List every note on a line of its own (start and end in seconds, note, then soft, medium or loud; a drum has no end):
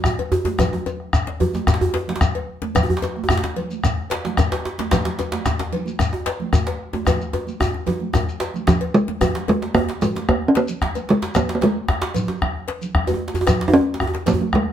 0.04 bombo rim loud
0.04 bombo low medium
0.04 djembe tone medium
0.04 djembe bass soft
0.04 shekere medium
0.19 cowbell medium
0.19 high conga soft
0.19 djembe bass medium
0.32 djembe slap medium
0.32 djembe bass loud
0.32 shekere soft
0.45 djembe slap medium
0.45 high conga medium
0.45 djembe bass medium
0.58 bombo rim medium
0.58 bombo low medium
0.58 cowbell medium
0.58 djembe tone medium
0.58 low conga medium
0.58 djembe bass medium
0.58 shekere medium
0.73 djembe tone medium
0.86 bombo rim soft
0.86 cowbell soft
0.86 djembe slap soft
0.86 djembe tone medium
0.86 shekere soft
1.00 bombo rim soft
1.13 bombo rim loud
1.13 bombo low loud
1.13 djembe bass medium
1.13 shekere medium
1.27 djembe slap medium
1.27 djembe tone medium
1.40 cowbell soft
1.40 djembe slap soft
1.40 low conga medium
1.40 djembe bass loud
1.54 high conga medium
1.54 djembe tone medium
1.54 shekere soft
1.67 bombo rim loud
1.67 bombo low loud
1.67 djembe slap soft
1.67 djembe slap medium
1.67 djembe tone medium
1.67 djembe bass medium
1.67 shekere medium
1.74 djembe slap medium
1.81 djembe bass loud
1.94 cowbell soft
1.94 djembe slap medium
1.94 djembe tone medium
2.08 djembe slap medium
2.08 high conga medium
2.08 low conga medium
2.16 djembe slap medium
2.21 bombo rim loud
2.21 bombo low loud
2.21 djembe slap soft
2.21 djembe tone medium
2.21 djembe bass medium
2.21 shekere medium
2.35 cowbell medium
2.35 djembe slap soft
2.62 djembe slap medium
2.62 djembe tone medium
2.62 high conga medium
2.75 bombo rim loud
2.75 bombo low loud
2.75 cowbell medium
2.75 djembe bass medium
2.75 low conga medium
2.75 shekere medium
2.83 djembe tone medium
2.90 djembe bass medium
2.97 djembe slap medium
3.02 bombo rim soft
3.02 cowbell medium
3.02 djembe slap soft
3.02 djembe slap medium
3.02 djembe tone medium
3.02 shekere soft
3.15 bombo rim soft
3.15 high conga medium
3.24 djembe tone medium
3.29 bombo rim loud
3.29 bombo low loud
3.29 djembe bass medium
3.29 shekere medium
3.37 djembe slap medium
3.44 djembe slap medium
3.44 djembe tone medium
3.56 cowbell soft
3.56 djembe slap soft
3.56 low conga medium
3.71 high conga medium
3.71 shekere soft
3.84 bombo rim loud
3.84 bombo low loud
3.84 djembe slap soft
3.84 djembe tone medium
3.84 djembe bass medium
3.84 shekere medium
4.10 cowbell soft
4.10 djembe slap loud
4.10 djembe slap medium
4.25 djembe slap medium
4.25 high conga medium
4.25 low conga medium
4.37 bombo rim medium
4.37 bombo low loud
4.37 djembe slap medium
4.37 djembe slap soft
4.37 djembe tone medium
4.37 djembe bass medium
4.37 shekere medium
4.52 cowbell soft
4.52 djembe slap loud
4.52 djembe slap soft
4.65 djembe slap medium
4.78 djembe slap medium
4.78 high conga medium
4.78 djembe tone medium
4.91 bombo rim medium
4.91 bombo low medium
4.91 cowbell medium
4.91 djembe slap loud
4.91 low conga medium
4.91 djembe bass medium
4.91 shekere medium
5.05 djembe slap medium
5.19 bombo rim soft
5.19 cowbell soft
5.19 djembe slap medium
5.19 djembe slap soft
5.19 djembe tone medium
5.19 shekere soft
5.32 bombo rim soft
5.32 djembe slap loud
5.32 high conga medium
5.46 bombo rim medium
5.46 bombo low loud
5.46 djembe slap medium
5.46 djembe bass medium
5.46 shekere medium
5.59 djembe slap medium
5.59 djembe tone medium
5.72 cowbell soft
5.72 djembe slap soft
5.72 low conga medium
5.86 high conga medium
5.86 shekere soft
5.99 bombo rim medium
5.99 bombo low medium
5.99 djembe slap soft
5.99 djembe tone medium
5.99 djembe bass medium
5.99 shekere medium
6.13 djembe tone medium
6.26 cowbell medium
6.26 djembe slap medium
6.40 high conga medium
6.40 low conga medium
6.53 bombo rim medium
6.53 bombo low medium
6.53 djembe slap soft
6.53 djembe tone medium
6.53 djembe bass medium
6.53 shekere medium
6.67 cowbell soft
6.67 djembe slap soft
6.67 djembe slap medium
6.93 djembe slap medium
6.93 djembe tone medium
6.93 high conga medium
7.07 bombo rim medium
7.07 bombo low medium
7.07 cowbell medium
7.07 djembe tone loud
7.07 low conga medium
7.07 djembe bass medium
7.07 shekere medium
7.21 bombo rim soft
7.21 high conga soft
7.21 shekere soft
7.33 cowbell medium
7.33 djembe tone loud
7.33 djembe tone medium
7.47 high conga medium
7.47 shekere soft
7.59 bombo rim medium
7.59 bombo low medium
7.59 high conga soft
7.59 djembe tone loud
7.59 djembe bass medium
7.59 shekere medium
7.73 high conga soft
7.73 djembe tone medium
7.86 cowbell soft
7.86 djembe tone loud
7.86 low conga medium
8.00 djembe slap soft
8.00 high conga medium
8.13 bombo rim medium
8.13 bombo low medium
8.13 djembe tone loud
8.13 djembe tone medium
8.13 djembe bass medium
8.13 shekere medium
8.28 djembe slap soft
8.28 shekere soft
8.40 cowbell soft
8.40 djembe slap medium
8.40 shekere soft
8.54 djembe slap soft
8.54 high conga medium
8.54 low conga medium
8.54 shekere soft
8.67 8.96 F3 medium
8.67 bombo rim loud
8.67 bombo low loud
8.67 djembe slap medium
8.67 djembe tone medium
8.67 djembe bass medium
8.67 shekere medium
8.81 cowbell medium
8.94 9.48 G#3 loud
8.94 djembe slap soft
8.94 shekere soft
9.08 bombo rim soft
9.08 djembe slap medium
9.08 high conga medium
9.08 djembe tone medium
9.21 bombo rim medium
9.21 bombo low medium
9.21 cowbell medium
9.21 low conga medium
9.21 djembe bass medium
9.21 shekere medium
9.35 djembe slap medium
9.48 9.76 G#3 medium
9.48 cowbell soft
9.48 djembe slap soft
9.48 high conga medium
9.48 djembe tone medium
9.62 djembe slap medium
9.74 10.01 A#3 loud
9.74 bombo rim loud
9.74 bombo low loud
9.74 djembe slap soft
9.74 djembe bass medium
9.74 djembe bass loud
9.89 djembe slap medium
10.01 10.30 G#3 medium
10.01 cowbell soft
10.01 djembe tone medium
10.01 low conga medium
10.01 shekere medium
10.15 djembe slap medium
10.15 high conga medium
10.15 djembe tone medium
10.29 10.48 A#3 loud
10.29 bombo rim medium
10.29 bombo low medium
10.29 djembe bass medium
10.42 bombo rim soft
10.48 10.58 C#4 medium
10.55 11.12 A#3 loud
10.55 cowbell soft
10.55 djembe slap medium
10.55 shekere soft
10.68 high conga soft
10.68 low conga medium
10.68 shekere soft
10.81 bombo rim medium
10.81 bombo low medium
10.81 djembe slap medium
10.81 djembe bass medium
10.95 cowbell medium
10.95 high conga medium
10.95 djembe tone medium
10.95 shekere soft
11.09 11.38 G#3 medium
11.09 djembe slap medium
11.22 djembe slap soft
11.22 djembe slap loud
11.22 shekere soft
11.34 11.54 A#3 medium
11.34 bombo rim medium
11.34 bombo low medium
11.34 cowbell medium
11.34 low conga medium
11.34 djembe bass medium
11.34 shekere medium
11.49 djembe slap medium
11.55 11.65 A#3 medium
11.61 13.22 G#3 medium
11.61 cowbell soft
11.61 djembe slap soft
11.61 djembe slap medium
11.61 high conga medium
11.61 djembe tone medium
11.88 bombo rim loud
11.88 bombo low medium
11.88 djembe slap medium
11.88 djembe slap soft
11.88 djembe bass medium
12.02 djembe slap loud
12.02 djembe slap medium
12.14 cowbell soft
12.14 low conga medium
12.14 shekere medium
12.28 djembe slap medium
12.28 djembe tone medium
12.42 bombo rim medium
12.42 bombo low medium
12.42 djembe bass medium
12.55 bombo rim soft
12.68 cowbell soft
12.68 djembe slap medium
12.81 high conga soft
12.81 low conga medium
12.81 shekere soft
12.95 bombo rim loud
12.95 bombo low loud
12.95 djembe bass medium
13.07 cowbell medium
13.07 djembe tone medium
13.07 high conga medium
13.07 djembe tone medium
13.07 shekere soft
13.14 djembe tone medium
13.28 djembe slap medium
13.34 djembe slap medium
13.34 djembe bass medium
13.34 shekere soft
13.41 djembe tone loud
13.47 bombo rim loud
13.47 bombo low medium
13.47 cowbell medium
13.47 djembe tone medium
13.47 low conga medium
13.47 djembe bass medium
13.47 shekere medium
13.61 djembe slap medium
13.68 13.75 D#4 medium
13.68 djembe bass medium
13.73 14.27 C#4 loud
13.73 cowbell soft
13.73 djembe slap soft
13.73 high conga medium
13.73 djembe tone medium
13.81 djembe tone medium
13.94 djembe slap medium
14.00 bombo rim loud
14.00 bombo low loud
14.00 djembe slap soft
14.00 djembe bass medium
14.07 djembe tone medium
14.14 djembe slap medium
14.14 djembe tone medium
14.26 14.57 A#3 medium
14.26 cowbell medium
14.26 djembe slap medium
14.26 low conga medium
14.26 shekere medium
14.33 djembe bass medium
14.40 high conga medium
14.40 djembe tone medium
14.53 14.73 G#3 medium
14.53 bombo rim loud
14.53 bombo low loud
14.53 djembe bass medium
14.66 bombo rim soft